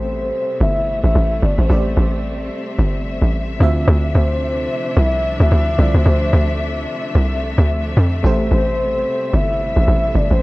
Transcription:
0.00 0.31 A1 loud
0.00 1.67 B2 medium
0.00 10.42 C3 medium
0.00 3.56 G3 medium
0.00 1.65 A3 medium
0.00 3.56 A3 medium
0.00 1.66 G4 medium
0.00 1.66 A4 medium
0.00 0.57 C5 loud
0.00 1.67 C5 medium
0.00 10.42 E5 medium
0.60 1.02 G1 loud
0.60 1.01 E5 loud
1.04 1.15 A1 medium
1.04 1.45 E5 loud
1.15 1.41 A1 loud
1.42 1.58 G1 loud
1.42 1.59 D5 loud
1.58 1.69 A1 medium
1.58 2.37 C5 medium
1.68 1.96 A1 loud
1.68 3.56 A3 medium
1.68 3.59 C4 medium
1.68 3.57 G4 medium
1.68 3.57 C5 medium
1.68 3.58 D5 medium
1.97 2.50 A1 loud
2.79 3.20 G1 loud
3.22 3.59 A1 medium
3.59 3.87 D2 loud
3.59 5.74 D3 medium
3.59 8.20 F3 medium
3.59 10.42 A3 medium
3.59 5.75 C4 medium
3.59 8.20 D4 medium
3.59 5.75 F4 medium
3.59 5.76 E5 medium
3.88 4.14 D2 loud
4.15 4.68 D2 medium
4.15 4.94 C5 loud
4.97 5.38 C2 loud
4.97 5.38 E5 loud
5.40 5.51 D2 loud
5.40 5.81 E5 loud
5.51 5.78 D2 medium
5.78 5.94 C2 loud
5.78 7.92 D3 medium
5.78 7.93 C4 medium
5.78 7.94 F4 medium
5.78 5.95 D5 loud
5.78 7.94 E5 medium
5.94 6.05 D2 medium
5.94 6.73 C5 medium
6.06 6.32 D2 loud
6.33 6.86 D2 loud
7.15 7.57 C2 medium
7.58 7.96 D2 loud
7.97 8.23 F2 medium
8.23 8.51 A1 loud
8.23 10.42 B2 medium
8.23 10.42 G3 medium
8.23 10.38 A3 medium
8.23 10.38 G4 medium
8.23 10.39 A4 medium
8.23 10.40 C5 medium
8.51 9.04 A1 loud
8.51 9.36 C5 loud
9.33 9.75 G1 loud
9.33 9.77 E5 loud
9.76 9.87 A1 medium
9.76 10.18 E5 loud
9.88 10.14 A1 loud
10.15 10.30 G1 medium
10.15 10.32 D5 loud
10.31 10.42 A1 medium
10.31 10.42 C5 medium

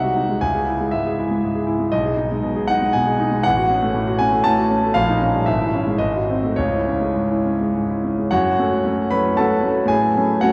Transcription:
0.00 0.38 C2 soft
0.00 0.44 C3 soft
0.00 0.29 G#3 soft
0.00 0.16 D#4 soft
0.00 0.03 F#4 soft
0.00 0.24 F#4 soft
0.00 0.43 D#5 medium
0.00 0.44 E5 medium
0.00 0.41 F#5 medium
0.16 0.37 D#4 soft
0.29 0.42 G#3 soft
0.41 1.88 C#2 soft
0.41 0.92 G#5 medium
0.54 0.74 G#4 soft
0.67 0.87 E4 soft
0.80 1.00 G#3 soft
0.91 1.13 G#2 soft
0.91 1.42 E5 medium
1.06 1.26 G#4 soft
1.19 1.38 E4 soft
1.31 1.50 G#3 soft
1.44 1.63 G#2 soft
1.55 1.75 G#4 soft
1.67 1.87 E4 soft
1.79 1.92 G#3 soft
1.92 3.41 B1 medium
1.92 2.69 D#5 medium
2.05 2.26 G#4 soft
2.17 2.38 D#4 soft
2.31 2.52 G#3 soft
2.43 2.64 B2 soft
2.56 2.77 G#4 soft
2.68 2.89 D#4 soft
2.68 2.94 F#5 medium
2.82 3.02 G#3 soft
2.93 3.14 B2 soft
2.93 3.44 G#5 medium
3.06 3.26 G#4 soft
3.20 3.40 D#4 soft
3.31 3.44 G#3 soft
3.43 4.92 A1 medium
3.43 4.20 F#5 medium
3.56 3.77 F#4 soft
3.69 3.90 C#4 soft
3.81 4.02 A3 soft
3.94 4.15 A2 soft
4.07 4.28 F#4 soft
4.19 4.40 C#4 soft
4.19 4.45 G#5 medium
4.32 4.53 A3 soft
4.44 4.65 A2 soft
4.44 4.95 A5 medium
4.58 4.78 F#4 soft
4.70 4.90 C#4 soft
4.83 4.96 A3 soft
4.94 5.45 A#1 medium
4.94 5.46 F5 medium
5.09 5.29 D#4 soft
5.21 5.42 C#4 soft
5.34 5.47 G3 soft
5.46 5.98 G#1 medium
5.46 5.99 E5 medium
5.61 5.81 E4 soft
5.74 5.95 C#4 soft
5.87 6.00 G#3 soft
5.98 6.55 G#1 medium
5.98 6.56 D#5 medium
6.15 6.37 F#4 soft
6.30 6.52 C4 soft
6.43 6.58 A3 soft
6.56 8.28 C#2 soft
6.56 8.03 C#5 medium
6.73 6.96 E4 soft
6.87 7.10 C#4 soft
7.01 7.25 G#3 soft
7.16 7.39 G#2 soft
7.31 7.54 E4 soft
7.45 7.68 C#4 soft
7.60 7.83 G#3 soft
7.75 7.98 G#2 soft
7.90 8.12 E4 soft
8.04 8.26 C#4 soft
8.18 8.32 G#3 soft
8.31 8.58 F#2 medium
8.31 9.08 F#4 medium
8.31 9.07 C#5 medium
8.31 9.11 F#5 medium
8.59 8.82 F#3 soft
8.59 8.82 A3 soft
8.59 8.83 C#4 soft
8.84 9.08 F#3 soft
8.84 9.08 A3 soft
8.84 9.08 C#4 soft
9.11 9.35 F#3 soft
9.11 9.35 A3 soft
9.11 9.36 C#4 soft
9.11 9.35 B4 medium
9.11 9.37 B5 medium
9.37 9.61 F#3 soft
9.37 9.62 A3 soft
9.37 9.62 C#4 soft
9.37 9.86 A4 soft
9.37 9.86 F#5 soft
9.37 9.90 A5 medium
9.62 9.86 F#3 soft
9.62 9.87 A3 soft
9.62 9.87 C#4 soft
9.86 10.13 A2 medium
9.86 10.38 G#4 medium
9.86 10.42 G#5 medium
10.16 10.40 F#3 soft
10.16 10.40 A3 soft
10.16 10.40 C#4 soft
10.41 10.52 F#3 soft
10.41 10.52 A3 soft
10.41 10.52 C#4 soft
10.41 10.52 F#4 medium
10.41 10.52 C#5 medium
10.41 10.52 F#5 medium

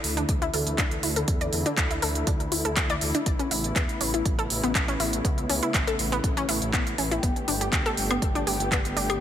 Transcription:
0.00 0.25 D2 medium
0.00 3.22 D3 medium
0.00 3.22 E3 medium
0.00 3.22 A3 medium
0.00 7.19 E4 medium
0.04 open hi-hat medium
0.17 0.23 D4 loud
0.17 closed hi-hat soft
0.29 0.50 D2 medium
0.29 kick loud
0.29 closed hi-hat medium
0.42 0.51 E4 loud
0.42 closed hi-hat soft
0.54 0.65 D2 medium
0.54 0.61 A4 medium
0.54 open hi-hat loud
0.67 0.76 D2 loud
0.67 closed hi-hat soft
0.78 0.99 D2 medium
0.78 0.89 D4 medium
0.78 kick loud
0.78 clap loud
0.78 closed hi-hat medium
0.91 closed hi-hat soft
1.03 1.24 D2 medium
1.03 1.07 E4 medium
1.03 open hi-hat medium
1.16 1.26 A4 medium
1.16 closed hi-hat soft
1.28 1.49 E2 medium
1.28 kick loud
1.28 closed hi-hat medium
1.41 1.51 D5 medium
1.41 closed hi-hat soft
1.53 1.64 E2 medium
1.53 open hi-hat loud
1.66 1.72 D4 loud
1.66 closed hi-hat soft
1.77 1.98 D2 medium
1.77 kick loud
1.77 clap loud
1.77 closed hi-hat medium
1.91 2.00 E4 loud
1.91 closed hi-hat soft
2.02 2.23 D2 medium
2.02 2.09 A4 medium
2.02 open hi-hat medium
2.15 closed hi-hat soft
2.27 2.48 D2 loud
2.27 2.38 D4 medium
2.27 kick loud
2.27 closed hi-hat medium
2.40 closed hi-hat soft
2.52 2.63 D2 medium
2.52 2.56 E4 medium
2.52 open hi-hat loud
2.65 2.75 D2 loud
2.65 2.75 A4 medium
2.65 closed hi-hat soft
2.77 2.98 D2 medium
2.77 kick loud
2.77 clap loud
2.77 closed hi-hat medium
2.90 2.99 D5 loud
2.90 closed hi-hat soft
3.01 3.13 D2 medium
3.01 open hi-hat medium
3.15 3.21 D4 loud
3.15 closed hi-hat soft
3.26 3.37 A1 loud
3.26 7.19 C#3 medium
3.26 9.20 A3 medium
3.26 7.19 B3 medium
3.26 kick loud
3.26 closed hi-hat medium
3.39 3.49 C#4 loud
3.39 closed hi-hat soft
3.51 3.72 A1 medium
3.51 3.58 E4 medium
3.51 open hi-hat loud
3.64 closed hi-hat soft
3.76 3.87 E2 medium
3.76 3.87 B3 medium
3.76 kick loud
3.76 clap loud
3.76 closed hi-hat medium
3.89 closed hi-hat soft
4.01 4.22 A1 medium
4.01 4.05 C#4 medium
4.01 open hi-hat loud
4.14 4.23 E4 medium
4.14 closed hi-hat soft
4.25 4.46 A1 medium
4.25 kick loud
4.25 closed hi-hat medium
4.39 4.48 A4 loud
4.39 closed hi-hat soft
4.50 4.61 A1 medium
4.50 open hi-hat loud
4.63 4.73 A1 medium
4.63 4.70 B3 loud
4.63 closed hi-hat soft
4.75 4.96 A1 medium
4.75 kick loud
4.75 clap loud
4.75 closed hi-hat medium
4.88 4.98 C#4 loud
4.88 closed hi-hat soft
5.00 5.21 A1 medium
5.00 5.07 E4 medium
5.00 open hi-hat medium
5.13 closed hi-hat soft
5.25 5.46 C#2 medium
5.25 5.35 B3 medium
5.25 kick loud
5.25 closed hi-hat medium
5.38 closed hi-hat soft
5.49 5.60 C#2 medium
5.49 5.54 C#4 medium
5.49 open hi-hat loud
5.63 5.72 E4 medium
5.63 closed hi-hat soft
5.74 5.95 A1 medium
5.74 kick loud
5.74 clap loud
5.74 closed hi-hat medium
5.87 5.97 A4 loud
5.87 closed hi-hat soft
5.99 6.20 A1 medium
5.99 open hi-hat medium
6.12 6.19 B3 loud
6.12 closed hi-hat soft
6.24 6.45 A1 loud
6.24 kick loud
6.24 closed hi-hat medium
6.37 6.46 C#4 loud
6.37 closed hi-hat soft
6.49 6.60 A1 medium
6.49 6.56 E4 medium
6.49 open hi-hat loud
6.62 6.72 A1 loud
6.62 closed hi-hat soft
6.73 6.94 A1 medium
6.73 6.84 B3 medium
6.73 kick loud
6.73 clap loud
6.73 closed hi-hat medium
6.87 closed hi-hat soft
6.98 7.19 A1 medium
6.98 7.03 C#4 medium
6.98 open hi-hat medium
7.11 7.21 E4 medium
7.11 closed hi-hat soft
7.23 7.34 G1 medium
7.23 9.20 D3 medium
7.23 7.34 B3 medium
7.23 9.20 B3 medium
7.23 9.20 G4 medium
7.23 kick loud
7.23 closed hi-hat medium
7.36 closed hi-hat soft
7.48 7.69 G1 medium
7.48 7.52 D4 medium
7.48 open hi-hat loud
7.61 7.70 G4 medium
7.61 closed hi-hat soft
7.73 7.84 D2 medium
7.73 kick loud
7.73 clap loud
7.73 closed hi-hat medium
7.86 7.95 A4 loud
7.86 closed hi-hat soft
7.97 8.18 G1 medium
7.97 open hi-hat medium
8.11 8.17 B3 loud
8.11 closed hi-hat soft
8.11 high woodblock medium
8.22 8.43 G1 medium
8.22 kick loud
8.22 closed hi-hat medium
8.35 8.45 D4 loud
8.35 closed hi-hat soft
8.47 8.58 G1 medium
8.47 8.54 G4 medium
8.47 open hi-hat medium
8.60 8.70 G1 medium
8.60 closed hi-hat soft
8.72 8.93 G1 medium
8.72 8.82 B3 medium
8.72 kick loud
8.72 clap loud
8.72 closed hi-hat medium
8.85 closed hi-hat soft
8.96 9.17 G1 loud
8.96 9.01 D4 medium
8.96 open hi-hat medium
9.10 9.19 G4 medium
9.10 closed hi-hat soft
9.10 high woodblock medium

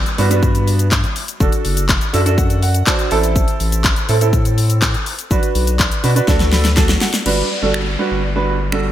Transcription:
0.06 closed hi-hat medium
0.06 shaker medium
0.18 1.05 G2 medium
0.18 0.25 G3 medium
0.18 0.25 B3 medium
0.18 0.25 D4 medium
0.18 0.25 F#4 medium
0.18 0.25 B4 medium
0.18 open hi-hat medium
0.18 shaker medium
0.30 0.85 G3 medium
0.30 0.85 B3 medium
0.30 0.85 D4 medium
0.30 0.85 F#4 medium
0.30 0.85 B4 loud
0.30 closed hi-hat medium
0.30 shaker medium
0.43 kick loud
0.43 shaker medium
0.55 closed hi-hat medium
0.55 shaker medium
0.68 open hi-hat medium
0.68 shaker medium
0.79 closed hi-hat medium
0.79 shaker medium
0.92 kick loud
0.92 clap loud
0.92 shaker medium
1.04 closed hi-hat soft
1.04 shaker soft
1.16 open hi-hat medium
1.16 shaker medium
1.28 closed hi-hat medium
1.28 shaker medium
1.40 1.49 F#1 loud
1.40 1.81 D4 medium
1.40 1.81 F#4 medium
1.40 1.81 A4 medium
1.40 kick loud
1.40 shaker medium
1.52 closed hi-hat medium
1.52 shaker medium
1.65 2.00 F#1 loud
1.65 open hi-hat medium
1.65 shaker medium
1.77 closed hi-hat medium
1.77 shaker medium
1.89 kick loud
1.89 clap loud
1.89 clap medium
1.89 shaker medium
2.01 closed hi-hat medium
2.01 shaker medium
2.13 2.83 F#2 medium
2.13 2.20 D4 medium
2.13 2.20 F#4 medium
2.13 2.21 A4 loud
2.13 2.36 E5 medium
2.13 open hi-hat medium
2.13 shaker medium
2.26 2.60 D4 medium
2.26 2.60 F#4 medium
2.26 2.60 A4 medium
2.26 closed hi-hat medium
2.26 shaker medium
2.38 2.61 F#5 medium
2.38 kick loud
2.38 shaker medium
2.50 closed hi-hat medium
2.50 shaker medium
2.63 2.85 F#5 medium
2.63 open hi-hat medium
2.63 shaker medium
2.74 closed hi-hat medium
2.74 shaker medium
2.87 3.11 D4 medium
2.87 3.11 F#4 medium
2.87 3.11 C5 loud
2.87 3.10 A5 medium
2.87 kick loud
2.87 clap loud
2.87 shaker medium
2.99 closed hi-hat soft
2.99 shaker soft
3.11 3.46 A1 loud
3.11 3.89 C4 medium
3.11 3.90 E4 medium
3.11 3.90 A4 loud
3.11 3.34 A5 medium
3.11 open hi-hat medium
3.11 shaker medium
3.23 closed hi-hat medium
3.23 shaker medium
3.36 kick loud
3.36 shaker medium
3.48 closed hi-hat medium
3.48 shaker medium
3.60 3.95 A1 loud
3.60 open hi-hat medium
3.60 shaker medium
3.72 closed hi-hat medium
3.72 shaker medium
3.84 kick loud
3.84 clap loud
3.84 clap medium
3.84 shaker medium
3.96 closed hi-hat medium
3.96 shaker medium
4.09 4.96 A2 medium
4.09 4.16 C4 medium
4.09 4.16 E4 medium
4.09 4.16 A4 loud
4.09 open hi-hat medium
4.09 shaker medium
4.21 4.75 C4 medium
4.21 4.75 E4 medium
4.21 4.75 A4 loud
4.21 closed hi-hat medium
4.21 shaker medium
4.33 kick loud
4.33 shaker medium
4.45 closed hi-hat medium
4.45 shaker medium
4.58 open hi-hat medium
4.58 shaker medium
4.70 closed hi-hat medium
4.70 shaker medium
4.82 kick loud
4.82 clap loud
4.82 clap medium
4.82 shaker medium
4.94 closed hi-hat soft
4.94 shaker soft
5.06 open hi-hat medium
5.06 shaker medium
5.19 closed hi-hat medium
5.19 shaker medium
5.31 5.39 B1 loud
5.31 5.71 D4 medium
5.31 5.72 F#4 medium
5.31 5.72 B4 loud
5.31 kick loud
5.31 shaker medium
5.43 closed hi-hat medium
5.43 shaker medium
5.55 5.90 B1 loud
5.55 open hi-hat medium
5.55 shaker medium
5.67 closed hi-hat medium
5.67 shaker medium
5.79 kick loud
5.79 clap medium
5.79 clap loud
5.79 shaker medium
5.91 closed hi-hat medium
5.91 shaker medium
6.03 6.21 B2 loud
6.03 6.11 D4 medium
6.03 6.11 F#4 medium
6.03 6.11 B4 medium
6.03 open hi-hat medium
6.03 shaker medium
6.16 6.27 D4 medium
6.16 6.27 F#4 medium
6.16 6.28 B4 medium
6.16 closed hi-hat medium
6.16 shaker medium
6.28 6.97 D2 loud
6.28 6.67 D4 loud
6.28 6.67 F#4 medium
6.28 6.67 A4 loud
6.28 kick loud
6.28 snare medium
6.28 shaker medium
6.40 snare medium
6.40 closed hi-hat medium
6.40 shaker medium
6.53 6.75 B5 medium
6.53 snare medium
6.53 open hi-hat medium
6.53 shaker medium
6.65 snare medium
6.65 closed hi-hat medium
6.65 shaker medium
6.77 7.04 D4 medium
6.77 7.04 F#4 medium
6.77 7.04 A4 loud
6.77 7.00 A5 medium
6.77 kick loud
6.77 snare medium
6.77 clap loud
6.77 shaker medium
6.89 snare medium
6.89 closed hi-hat soft
6.89 shaker soft
7.01 7.24 F#5 medium
7.01 snare loud
7.01 open hi-hat medium
7.01 shaker soft
7.14 snare loud
7.14 closed hi-hat medium
7.14 shaker medium
7.26 7.43 G1 medium
7.26 7.46 G3 medium
7.26 7.46 D4 medium
7.26 7.46 F#4 medium
7.26 7.46 B4 medium
7.26 crash medium
7.26 downlifter medium
7.62 7.97 G1 medium
7.62 7.83 G3 medium
7.62 7.83 D4 medium
7.62 7.83 F#4 medium
7.62 7.83 A4 medium
7.74 finger snap loud
7.99 8.19 G3 medium
7.99 8.19 D4 medium
7.99 8.19 F#4 medium
7.99 8.20 B4 medium
8.11 8.92 G1 medium
8.36 8.56 G3 medium
8.36 8.56 D4 medium
8.36 8.56 F#4 medium
8.36 8.56 B4 medium
8.72 8.92 G3 medium
8.72 8.92 D4 medium
8.72 8.92 F#4 medium
8.72 8.92 A4 medium
8.72 finger snap loud

